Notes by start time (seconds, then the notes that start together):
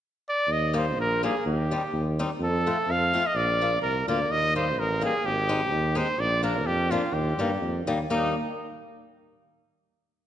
0.29 D5
0.47 D#2
0.52 D#5
0.73 G3 A#3 D#4 C5
0.97 A#1 A#4
1.23 G3 A#3 D#4 G#4
1.46 D#2 G4
1.71 G3 C4 D#4
1.92 D#2
2.19 G3 C4 D#4
2.39 F2
2.44 A4
2.66 A3 C4 F4
2.87 F2
2.91 F5
3.14 A3 C4 F4
3.26 D#5
3.35 A#1 D5
3.61 A#3 D4 F4
3.81 C2 A#4
4.07 D2 A#3 D4 F4 D5
4.29 D#2 D#5
4.55 G3 A#3 D#4 C5
4.77 A1 A#4
5.01 G3 A#3 D#4 G#4
5.24 G#1 G4
5.49 G#3 C4 D#4
5.71 D#2
5.95 G#3 C4 D#4 C5
6.18 A#1 D5
6.43 F3 A#3 D4 A#4
6.65 F2 G4
6.91 F3 A#3 D4 F4
7.12 D#2 G4
7.37 G2 G3 A#3 D#4
7.61 F2
7.86 D#2 G3 A#3 D#4
8.09 D#2 G3 A#3 D#4